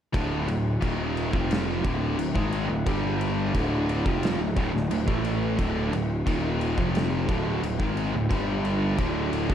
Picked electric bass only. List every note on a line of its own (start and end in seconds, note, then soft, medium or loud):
0.14 0.45 D1 loud
0.48 0.80 D1 medium
0.82 1.30 D#1 loud
1.33 1.81 F1 medium
1.85 2.16 D1 loud
2.18 2.34 D1 medium
2.35 2.67 G#1 medium
2.70 2.85 D1 medium
2.86 3.50 G1 loud
3.55 4.02 D1 loud
4.06 4.37 F1 medium
4.38 4.55 D1 medium
4.56 4.72 D1 loud
4.73 4.89 D1 medium
4.91 5.06 D1 medium
5.07 5.55 A1 loud
5.59 5.90 D1 loud
5.93 6.24 D1 medium
6.26 6.74 D#1 loud
6.78 7.25 F1 medium
7.29 7.60 D1 loud
7.63 7.78 D1 medium
7.79 8.11 G#1 medium
8.14 8.30 D1 medium
8.31 8.95 G1 loud
8.99 9.46 D1 medium
9.50 9.54 F1 medium